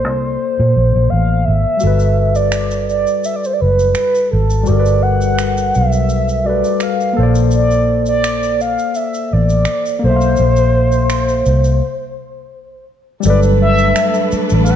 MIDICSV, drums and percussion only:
0, 0, Header, 1, 2, 480
1, 0, Start_track
1, 0, Key_signature, 1, "major"
1, 0, Tempo, 714286
1, 1212, Time_signature, 4, 2, 24, 8
1, 9917, End_track
2, 0, Start_track
2, 0, Title_t, "Drums"
2, 1209, Note_on_c, 9, 82, 64
2, 1276, Note_off_c, 9, 82, 0
2, 1340, Note_on_c, 9, 82, 39
2, 1407, Note_off_c, 9, 82, 0
2, 1580, Note_on_c, 9, 82, 48
2, 1647, Note_off_c, 9, 82, 0
2, 1693, Note_on_c, 9, 26, 60
2, 1693, Note_on_c, 9, 82, 60
2, 1760, Note_off_c, 9, 26, 0
2, 1760, Note_off_c, 9, 82, 0
2, 1821, Note_on_c, 9, 82, 37
2, 1888, Note_off_c, 9, 82, 0
2, 1943, Note_on_c, 9, 82, 41
2, 2010, Note_off_c, 9, 82, 0
2, 2062, Note_on_c, 9, 82, 37
2, 2129, Note_off_c, 9, 82, 0
2, 2177, Note_on_c, 9, 82, 54
2, 2244, Note_off_c, 9, 82, 0
2, 2311, Note_on_c, 9, 82, 42
2, 2378, Note_off_c, 9, 82, 0
2, 2547, Note_on_c, 9, 82, 40
2, 2614, Note_off_c, 9, 82, 0
2, 2653, Note_on_c, 9, 26, 50
2, 2653, Note_on_c, 9, 82, 47
2, 2720, Note_off_c, 9, 26, 0
2, 2720, Note_off_c, 9, 82, 0
2, 2787, Note_on_c, 9, 82, 41
2, 2854, Note_off_c, 9, 82, 0
2, 3024, Note_on_c, 9, 82, 41
2, 3091, Note_off_c, 9, 82, 0
2, 3132, Note_on_c, 9, 82, 62
2, 3199, Note_off_c, 9, 82, 0
2, 3264, Note_on_c, 9, 82, 42
2, 3331, Note_off_c, 9, 82, 0
2, 3503, Note_on_c, 9, 82, 43
2, 3570, Note_off_c, 9, 82, 0
2, 3619, Note_on_c, 9, 26, 54
2, 3619, Note_on_c, 9, 82, 58
2, 3686, Note_off_c, 9, 26, 0
2, 3686, Note_off_c, 9, 82, 0
2, 3745, Note_on_c, 9, 82, 41
2, 3812, Note_off_c, 9, 82, 0
2, 3860, Note_on_c, 9, 82, 43
2, 3928, Note_off_c, 9, 82, 0
2, 3980, Note_on_c, 9, 82, 40
2, 4047, Note_off_c, 9, 82, 0
2, 4094, Note_on_c, 9, 82, 50
2, 4161, Note_off_c, 9, 82, 0
2, 4224, Note_on_c, 9, 82, 43
2, 4291, Note_off_c, 9, 82, 0
2, 4463, Note_on_c, 9, 82, 40
2, 4530, Note_off_c, 9, 82, 0
2, 4571, Note_on_c, 9, 26, 51
2, 4571, Note_on_c, 9, 82, 53
2, 4638, Note_off_c, 9, 26, 0
2, 4638, Note_off_c, 9, 82, 0
2, 4707, Note_on_c, 9, 82, 42
2, 4774, Note_off_c, 9, 82, 0
2, 4939, Note_on_c, 9, 82, 44
2, 5006, Note_off_c, 9, 82, 0
2, 5047, Note_on_c, 9, 82, 60
2, 5114, Note_off_c, 9, 82, 0
2, 5179, Note_on_c, 9, 82, 41
2, 5247, Note_off_c, 9, 82, 0
2, 5415, Note_on_c, 9, 82, 43
2, 5483, Note_off_c, 9, 82, 0
2, 5538, Note_on_c, 9, 26, 65
2, 5538, Note_on_c, 9, 82, 58
2, 5605, Note_off_c, 9, 26, 0
2, 5605, Note_off_c, 9, 82, 0
2, 5664, Note_on_c, 9, 82, 40
2, 5731, Note_off_c, 9, 82, 0
2, 5784, Note_on_c, 9, 82, 43
2, 5851, Note_off_c, 9, 82, 0
2, 5904, Note_on_c, 9, 82, 39
2, 5971, Note_off_c, 9, 82, 0
2, 6011, Note_on_c, 9, 82, 51
2, 6079, Note_off_c, 9, 82, 0
2, 6142, Note_on_c, 9, 82, 46
2, 6209, Note_off_c, 9, 82, 0
2, 6379, Note_on_c, 9, 82, 39
2, 6446, Note_off_c, 9, 82, 0
2, 6486, Note_on_c, 9, 26, 55
2, 6486, Note_on_c, 9, 82, 45
2, 6553, Note_off_c, 9, 26, 0
2, 6553, Note_off_c, 9, 82, 0
2, 6624, Note_on_c, 9, 82, 42
2, 6691, Note_off_c, 9, 82, 0
2, 6860, Note_on_c, 9, 82, 40
2, 6928, Note_off_c, 9, 82, 0
2, 6964, Note_on_c, 9, 82, 60
2, 7032, Note_off_c, 9, 82, 0
2, 7098, Note_on_c, 9, 82, 46
2, 7165, Note_off_c, 9, 82, 0
2, 7337, Note_on_c, 9, 82, 43
2, 7404, Note_off_c, 9, 82, 0
2, 7457, Note_on_c, 9, 26, 61
2, 7457, Note_on_c, 9, 82, 58
2, 7524, Note_off_c, 9, 26, 0
2, 7524, Note_off_c, 9, 82, 0
2, 7583, Note_on_c, 9, 82, 37
2, 7650, Note_off_c, 9, 82, 0
2, 7700, Note_on_c, 9, 82, 39
2, 7767, Note_off_c, 9, 82, 0
2, 7822, Note_on_c, 9, 82, 37
2, 7889, Note_off_c, 9, 82, 0
2, 8891, Note_on_c, 9, 82, 67
2, 8958, Note_off_c, 9, 82, 0
2, 9022, Note_on_c, 9, 82, 45
2, 9090, Note_off_c, 9, 82, 0
2, 9261, Note_on_c, 9, 82, 45
2, 9328, Note_off_c, 9, 82, 0
2, 9380, Note_on_c, 9, 26, 58
2, 9380, Note_on_c, 9, 82, 65
2, 9447, Note_off_c, 9, 26, 0
2, 9447, Note_off_c, 9, 82, 0
2, 9502, Note_on_c, 9, 82, 43
2, 9569, Note_off_c, 9, 82, 0
2, 9620, Note_on_c, 9, 82, 50
2, 9688, Note_off_c, 9, 82, 0
2, 9741, Note_on_c, 9, 82, 42
2, 9808, Note_off_c, 9, 82, 0
2, 9851, Note_on_c, 9, 82, 60
2, 9917, Note_off_c, 9, 82, 0
2, 9917, End_track
0, 0, End_of_file